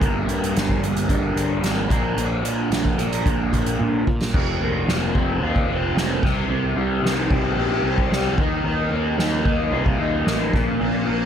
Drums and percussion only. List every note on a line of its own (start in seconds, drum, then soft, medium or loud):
0.01 kick loud
0.01 closed hi-hat medium
0.29 closed hi-hat medium
0.44 closed hi-hat medium
0.57 snare loud
0.57 closed hi-hat medium
0.69 kick medium
0.84 closed hi-hat medium
0.97 closed hi-hat medium
1.09 kick loud
1.09 closed hi-hat medium
1.37 closed hi-hat medium
1.64 snare loud
1.64 closed hi-hat medium
1.90 kick loud
1.90 closed hi-hat medium
2.18 closed hi-hat medium
2.45 closed hi-hat medium
2.72 snare loud
2.72 closed hi-hat medium
2.85 kick medium
2.99 closed hi-hat medium
3.13 closed hi-hat medium
3.26 kick loud
3.26 closed hi-hat medium
3.53 kick medium
3.53 closed hi-hat medium
3.66 closed hi-hat medium
3.80 high tom medium
4.07 kick medium
4.22 snare medium
4.34 kick loud
4.34 crash loud
4.61 ride medium
4.88 snare loud
4.88 ride loud
5.15 kick loud
5.15 ride medium
5.42 ride medium
5.56 kick medium
5.69 ride medium
5.96 snare loud
5.96 ride loud
6.23 kick loud
6.23 snare soft
6.23 crash loud
6.78 ride medium
7.05 snare loud
7.05 ride loud
7.31 kick loud
7.31 ride medium
7.58 ride loud
7.85 ride medium
7.98 kick medium
8.12 snare loud
8.12 ride medium
8.38 kick loud
8.38 ride medium
8.65 ride loud
8.92 ride medium
9.18 snare loud
9.18 ride loud
9.45 kick medium
9.45 ride medium
9.73 ride medium
9.86 kick medium
9.99 ride medium
10.26 snare loud
10.26 ride medium
10.53 kick loud
10.53 snare soft
10.53 ride medium
10.80 ride loud
11.07 ride medium